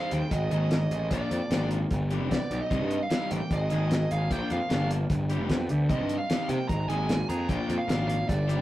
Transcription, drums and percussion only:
0.11 closed hi-hat medium
0.31 kick medium
0.31 closed hi-hat medium
0.51 closed hi-hat medium
0.71 snare loud
0.71 closed hi-hat medium
0.91 closed hi-hat medium
1.11 kick medium
1.11 closed hi-hat medium
1.31 closed hi-hat medium
1.51 snare loud
1.51 closed hi-hat medium
1.71 closed hi-hat medium
1.91 kick loud
1.91 closed hi-hat medium
2.11 closed hi-hat medium
2.31 kick medium
2.31 snare medium
2.31 closed hi-hat medium
2.51 closed hi-hat medium
2.71 kick loud
2.71 closed hi-hat medium
2.91 closed hi-hat medium
3.10 snare loud
3.10 closed hi-hat medium
3.31 closed hi-hat medium
3.51 kick medium
3.51 closed hi-hat medium
3.70 closed hi-hat medium
3.91 snare medium
3.91 closed hi-hat medium
4.11 closed hi-hat medium
4.31 kick loud
4.31 closed hi-hat medium
4.50 closed hi-hat medium
4.70 snare medium
4.70 closed hi-hat medium
4.91 closed hi-hat medium
5.10 kick loud
5.10 closed hi-hat medium
5.30 closed hi-hat medium
5.49 kick medium
5.49 snare medium
5.49 closed hi-hat medium
5.69 closed hi-hat medium
5.90 kick loud
5.90 closed hi-hat medium
6.09 closed hi-hat medium
6.30 snare loud
6.30 closed hi-hat medium
6.49 closed hi-hat medium
6.69 kick medium
6.69 closed hi-hat medium
6.90 closed hi-hat soft
7.09 snare medium
7.09 closed hi-hat medium
7.30 closed hi-hat medium
7.49 kick loud
7.49 closed hi-hat medium
7.70 closed hi-hat medium
7.89 snare loud
7.89 closed hi-hat medium
8.10 closed hi-hat medium
8.29 kick loud
8.29 closed hi-hat medium
8.49 closed hi-hat medium

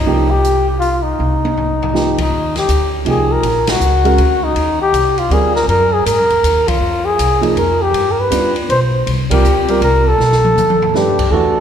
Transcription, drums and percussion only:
0.44 closed hi-hat soft
0.82 open hi-hat soft
1.20 high tom soft
1.45 high tom medium
1.57 floor tom medium
1.82 floor tom medium
1.95 snare soft
2.18 kick medium
2.18 ride medium
2.56 snare soft
2.56 ride soft
2.69 hi-hat pedal medium
2.69 ride medium
3.06 ride soft
3.43 ride medium
3.67 snare medium
3.67 ride medium
3.81 hi-hat pedal soft
4.05 ride soft
4.18 ride medium
4.56 ride medium
4.94 hi-hat pedal soft
4.94 ride medium
5.18 ride soft
5.31 ride soft
5.56 snare soft
5.69 ride soft
6.06 hi-hat pedal medium
6.06 ride medium
6.30 ride soft
6.44 hi-hat pedal soft
6.44 ride medium
6.68 kick medium
6.68 ride medium
7.19 hi-hat pedal medium
7.19 ride medium
7.43 ride soft
7.57 ride soft
7.94 ride medium
8.32 hi-hat pedal medium
8.32 ride medium
8.56 ride soft
8.70 ride medium
9.07 ride medium
9.31 kick medium
9.31 ride medium
9.45 hi-hat pedal medium
9.68 ride soft
9.82 ride soft
10.20 snare soft
10.32 snare medium
10.45 mid tom medium
10.58 hi-hat pedal medium
10.58 mid tom medium
10.70 mid tom medium
10.82 floor tom medium
10.95 snare soft
11.19 kick medium
11.19 crash medium

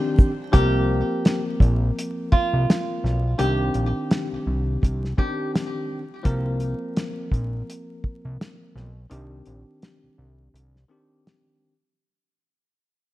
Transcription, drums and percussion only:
0.18 kick loud
0.18 shaker medium
0.54 kick loud
0.54 closed hi-hat loud
1.25 snare loud
1.25 closed hi-hat medium
1.60 kick loud
1.60 closed hi-hat soft
1.99 closed hi-hat medium
2.32 kick medium
2.70 snare loud
2.70 closed hi-hat medium
3.05 snare soft
3.39 closed hi-hat loud
3.74 closed hi-hat medium
4.11 snare loud
4.11 closed hi-hat medium
4.83 kick loud
4.83 closed hi-hat loud
5.04 snare soft
5.18 kick medium
5.56 snare loud
5.56 closed hi-hat medium
6.25 kick loud
6.25 closed hi-hat loud
6.60 closed hi-hat medium
6.97 snare loud
6.97 closed hi-hat medium
7.32 kick medium
7.32 closed hi-hat soft
7.70 closed hi-hat medium
8.04 kick medium
8.41 snare loud
8.41 closed hi-hat medium
8.77 snare soft
9.11 closed hi-hat loud
9.46 closed hi-hat medium
9.82 snare loud
9.82 closed hi-hat medium
10.55 closed hi-hat loud
10.76 snare soft
11.27 snare loud
11.27 closed hi-hat medium

